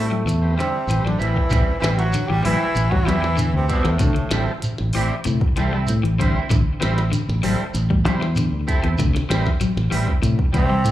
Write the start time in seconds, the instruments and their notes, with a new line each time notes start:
Already playing: fingered electric bass A2, clean electric guitar G3 C4 E4, trombone A3
0.11 clean electric guitar F#3
0.25 fingered electric bass E2, clean electric guitar E3, shekere
0.29 closed hi-hat
0.42 transistor combo organ C4 G4 B4
0.56 baritone saxophone C3, tenor saxophone C3, clean electric guitar D3 G3 E4, trombone C4, closed hi-hat, shekere
0.61 snare
0.87 fingered electric bass A1, clean electric guitar E3, transistor combo organ C4 G4 B4, closed hi-hat, shekere
1.04 fingered electric bass A1, baritone saxophone D3, tenor saxophone D3, clean electric guitar F#3, trombone D4, snare
1.18 fingered electric bass A1, baritone saxophone E3, tenor saxophone E3, clean electric guitar G3 C4 E4, trombone E4, closed hi-hat, shekere
1.37 muted clean electric guitar stroke, kick
1.50 fingered electric bass A1, clean electric guitar G3 C4 E4, muted clean electric guitar stroke, kick, closed hi-hat, shekere
1.80 fingered electric bass A1, baritone saxophone E3, clean electric guitar E3 G3 C4 E4, transistor combo organ C4 G4 B4, trombone E4, closed hi-hat, shekere
1.84 tenor saxophone E3, snare
1.97 tenor saxophone F#3, baritone saxophone F#3, trombone F#4, closed hi-hat
2.13 clean electric guitar D3, closed hi-hat, shekere
2.28 fingered electric bass A1, clean electric guitar E3, baritone saxophone G3, tenor saxophone G3, trombone G4
2.42 fingered electric bass A1, baritone saxophone E3, tenor saxophone E3, clean electric guitar F#3 G3 C4 E4, transistor combo organ C4 G4 B4, trombone E4, open hi-hat, shekere
2.61 muted fingered electric bass stroke
2.75 fingered electric bass A1, closed hi-hat, shekere
2.90 baritone saxophone F#3, tenor saxophone F#3, clean electric guitar G3, trombone F#4, kick
3.06 fingered electric bass E2, tenor saxophone E3, clean electric guitar F#3 G3 C4 E4, transistor combo organ C4 G4 D5, trombone E4, snare, closed hi-hat, shekere
3.10 baritone saxophone E3
3.22 clean electric guitar E3, snare
3.37 clean electric guitar D3, closed hi-hat, shekere
3.53 fingered electric bass D2, baritone saxophone C3, tenor saxophone C3, trombone C4
3.68 tenor saxophone B2, clean electric guitar G3 C4 E4, trombone B3, transistor combo organ C4 G4 D5, kick, closed hi-hat, shekere
3.72 baritone saxophone B2
3.84 fingered electric bass E2, baritone saxophone A2, clean electric guitar E3, trombone A3, snare, closed hi-hat
3.89 tenor saxophone A2
3.99 fingered electric bass D2, clean electric guitar C3, kick, closed hi-hat, shekere
4.14 clean electric guitar D3, closed hi-hat
4.31 fingered electric bass A1, clean electric guitar E3 G3 C4 E4, transistor combo organ C4 G4 A4, snare, closed hi-hat, shekere
4.62 muted fingered electric bass stroke, closed hi-hat, shekere
4.78 fingered electric bass A1, snare
4.93 fingered electric bass A1, clean electric guitar E3 C4 E4, transistor combo organ C4 G4 D5, open hi-hat, shekere
5.24 fingered electric bass A2, clean electric guitar C3, closed hi-hat, shekere
5.41 kick
5.56 fingered electric bass C2, clean electric guitar E3 G3 C4 E4, transistor combo organ C4 G4 A4, closed hi-hat, shekere
5.73 clean electric guitar G3 C4 E4
5.87 fingered electric bass A2, closed hi-hat, shekere
6.03 fingered electric bass A1, clean electric guitar E3, closed hi-hat
6.19 clean electric guitar D3 G3 C4 E4, transistor combo organ C4 G4 C5, kick, closed hi-hat, shekere
6.35 clean electric guitar C4 E4
6.50 fingered electric bass A1, clean electric guitar D3, kick, closed hi-hat, shekere
6.80 fingered electric bass A1, clean electric guitar E3 G3 C4 E4, transistor combo organ C4 G4 B4, snare, closed hi-hat, shekere
6.98 snare, closed hi-hat
7.12 clean electric guitar D3, closed hi-hat, shekere
7.29 fingered electric bass A1, snare
7.43 fingered electric bass A1, clean electric guitar F#3 G3 C4 E4, transistor combo organ C4 G4 A4, open hi-hat, shekere
7.60 muted fingered electric bass stroke
7.74 fingered electric bass A1, closed hi-hat, shekere
7.90 clean electric guitar G3, kick
8.04 fingered electric bass E2, clean electric guitar F#3 G3 E4, transistor combo organ C4 G4 C5, closed hi-hat, shekere
8.21 clean electric guitar E3, snare
8.36 clean electric guitar D3, closed hi-hat, shekere
8.52 fingered electric bass D2
8.67 transistor combo organ C4 G4 A4, clean electric guitar E4, kick, closed hi-hat, shekere
8.83 fingered electric bass E2, clean electric guitar E3 C4 E4, closed hi-hat
8.98 fingered electric bass D2, clean electric guitar C3, kick, closed hi-hat, shekere
9.15 clean electric guitar D3, snare, closed hi-hat
9.29 fingered electric bass A1, clean electric guitar E3 G3 C4 E4, transistor combo organ C4 G4 B4, snare, closed hi-hat, shekere
9.46 kick, snare
9.60 clean electric guitar F#3, muted fingered electric bass stroke, closed hi-hat, shekere
9.77 fingered electric bass A1, snare
9.90 fingered electric bass A1, clean electric guitar E3 G3 C4 E4, transistor combo organ C4 G4 B4, open hi-hat, shekere
10.08 kick
10.22 fingered electric bass A2, clean electric guitar C3, closed hi-hat, shekere
10.39 kick
10.52 fingered electric bass C2, baritone saxophone C3, clean electric guitar E3 G3 C4 E4, transistor combo organ C4 G4 B4, trombone C4, kick, closed hi-hat, shekere
10.57 tenor saxophone C3
10.70 clean electric guitar G3
10.85 fingered electric bass A2, closed hi-hat, shekere